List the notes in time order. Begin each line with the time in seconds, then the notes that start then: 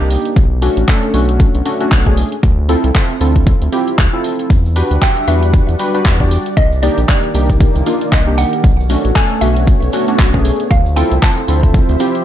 Already playing: C2
0.00 A#3 D4 D#4 G4
0.10 open hi-hat
0.25 closed hi-hat
0.36 B1, kick, closed hi-hat
0.62 A3 C#4 D4 F#4, open hi-hat
0.77 A1, closed hi-hat
0.88 A3 C#4 D4 A4, kick, clap, closed hi-hat
1.03 closed hi-hat
1.14 B1 A3 C#4 D4 F#4, open hi-hat
1.29 closed hi-hat
1.40 kick, closed hi-hat
1.55 B1, closed hi-hat
1.65 A3 C#4 D4 F#4, open hi-hat
1.80 A3 C#4 D4 F#4, closed hi-hat
1.91 B1, kick, clap, closed hi-hat
2.06 A3 C#4 D4 G#4, kick
2.17 open hi-hat
2.32 closed hi-hat
2.43 D2, kick, closed hi-hat
2.69 C4 E4 F4 A4, open hi-hat
2.84 C2, closed hi-hat
2.95 C4 E4 F4 A4, kick, clap, closed hi-hat
3.10 closed hi-hat
3.21 D2 C4 E4 F4 A4, open hi-hat
3.36 kick, closed hi-hat
3.47 kick, closed hi-hat
3.62 D2, closed hi-hat
3.72 C4 E4 F4 G4, open hi-hat
3.88 closed hi-hat
3.98 D2, kick, clap, closed hi-hat
4.13 C4 E4 F4 A4
4.24 open hi-hat
4.39 closed hi-hat
4.50 E2 G3 D5 F#5, kick, closed hi-hat, shaker
4.65 shaker
4.76 D4 F#4 G4 B4, open hi-hat, shaker
4.91 D2, closed hi-hat, shaker
5.02 D4 F#4 G4 E5 G5, kick, clap, closed hi-hat, shaker
5.17 closed hi-hat
5.28 E2 D4 F#4 G4 B4 E5, open hi-hat, shaker
5.43 closed hi-hat, shaker
5.53 kick, closed hi-hat, shaker
5.68 E2, closed hi-hat, shaker
5.79 D4 F#4 G4 B4, open hi-hat, shaker
5.94 D4 F#4 G4 B4, closed hi-hat, shaker
6.05 E2, kick, clap, closed hi-hat, shaker
6.20 D4 F#4 G4 D5, kick
6.31 open hi-hat, shaker
6.46 closed hi-hat, shaker
6.57 C2 D#3 A#3 D#5, kick, closed hi-hat, shaker
6.72 shaker
6.82 A#3 D4 D#4 G4 D5, open hi-hat, shaker
6.98 A#1, closed hi-hat, shaker
7.08 A#3 D4 D#4 G4 D5, kick, clap, closed hi-hat, shaker
7.24 closed hi-hat
7.34 C2 A#3 D4 D#4 G4, open hi-hat, shaker
7.50 kick, closed hi-hat, shaker
7.60 kick, closed hi-hat, shaker
7.75 C2, closed hi-hat, shaker
7.86 A#3 D4 D#4 F4, open hi-hat, shaker
8.01 closed hi-hat, shaker
8.12 C2 D#5, kick, clap, closed hi-hat, shaker
8.27 A#3 D4 D#4 G4
8.38 F#5, open hi-hat, shaker
8.53 closed hi-hat, shaker
8.64 B1 A3 B3 C#5, kick, closed hi-hat, shaker
8.80 shaker
8.89 A3 C#4 D4 F#4, open hi-hat, shaker
9.05 A1, closed hi-hat, shaker
9.15 A3 C#4 D4 A4 G#5, kick, clap, closed hi-hat, shaker
9.31 closed hi-hat
9.41 B1 A3 C#4 D4 F#4 E5, open hi-hat, shaker
9.57 closed hi-hat, shaker
9.67 kick, closed hi-hat, shaker
9.82 B1, closed hi-hat, shaker
9.93 A3 C#4 D4 F#4, open hi-hat, shaker
10.08 A3 C#4 D4 F#4, closed hi-hat, shaker
10.19 B1, kick, clap, closed hi-hat, shaker
10.34 A3 C#4 D4 G#4, kick
10.45 open hi-hat, shaker
10.60 closed hi-hat, shaker
10.70 D2 F3 C5 E5 F5, kick, closed hi-hat, shaker
10.85 shaker
10.96 C4 E4 F4 A4 G5, open hi-hat, shaker
11.12 C2, closed hi-hat, shaker
11.22 C4 E4 F4 A4 A5, kick, clap, closed hi-hat, shaker
11.37 closed hi-hat
11.48 D2 C4 E4 F4 A4, open hi-hat, shaker
11.63 kick, closed hi-hat, shaker
11.74 kick, closed hi-hat, shaker
11.89 D2, closed hi-hat, shaker
12.00 C4 E4 F4 G4, open hi-hat, shaker
12.15 closed hi-hat, shaker